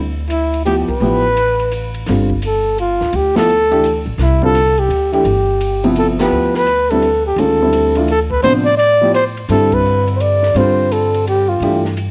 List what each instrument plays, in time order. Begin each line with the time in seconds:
Already playing: upright bass D2
0.30 trumpet E4, hi-hat pedal, ride
0.54 ride
0.66 upright piano F3 B3 E4 G4, trumpet G4, ride
0.88 trumpet B4, muted upright bass stroke, kick, ride
1.00 upright bass A1, upright piano F3 B3 E4 G4
1.37 hi-hat pedal, ride
1.60 ride
1.72 hi-hat pedal, ride
1.94 ride
2.06 upright bass G1, upright piano D3 G3 C4 F4, snare, ride
2.30 kick
2.42 hi-hat pedal, ride
2.46 trumpet A4
2.78 trumpet F4, ride
3.01 upright bass D2, snare
3.13 upright bass D2, trumpet G4, ride
3.36 upright piano F3 B3 E4 A4, trumpet A4, snare, ride
3.49 hi-hat pedal
3.71 upright piano E3 A3 D4 G4, ride
3.84 hi-hat pedal, ride
4.06 upright bass A1
4.18 upright bass C2, snare, ride
4.22 trumpet E4
4.42 upright piano D3 G3 C4 F4, trumpet A4, kick
4.55 hi-hat pedal, ride
4.78 trumpet G4, ride
4.89 upright bass D2, ride
5.12 upright piano E3 A3 D4 G4, trumpet G4, ride
5.24 upright bass G1, ride
5.61 hi-hat pedal, ride
5.84 upright piano C3 F3 B3 E4, ride
5.96 trumpet A4, ride
6.19 upright piano F3 B3 E4 G4, trumpet B4, snare, ride
6.31 upright bass D2
6.54 trumpet B4, snare
6.66 hi-hat pedal, ride
6.90 upright piano D3 G3 C4 E4, trumpet A4, ride
7.02 ride
7.26 trumpet G4
7.36 upright bass D2, upright piano D#3 G#3 C#4 F4, trumpet A4, ride
7.62 upright piano D3 G3 C4 E4
7.73 hi-hat pedal, ride
7.95 upright piano E3 A3 D4 F4, ride
8.08 trumpet A4, ride
8.31 trumpet B4, kick
8.42 upright bass A2, upright piano C3 F3 B3 D4, trumpet C5, ride
8.65 trumpet D5
8.78 trumpet D5, hi-hat pedal, ride
9.01 upright piano F3 B3 E4 G4
9.14 trumpet C5, ride
9.37 ride
9.49 upright bass G2, upright piano D3 G3 C4 E4, trumpet A4, ride
9.72 trumpet B4, kick, ride
9.85 hi-hat pedal
10.08 ride
10.16 trumpet C5
10.21 trumpet D5, ride
10.43 snare
10.54 upright bass G2, upright piano D3 G3 C4 F4, trumpet C5, ride
10.92 trumpet A4, hi-hat pedal, ride
11.14 ride
11.27 trumpet G4, ride
11.49 trumpet F4
11.60 upright bass G2, upright piano E3 A3 D4 G4, ride
11.85 snare
11.97 hi-hat pedal, ride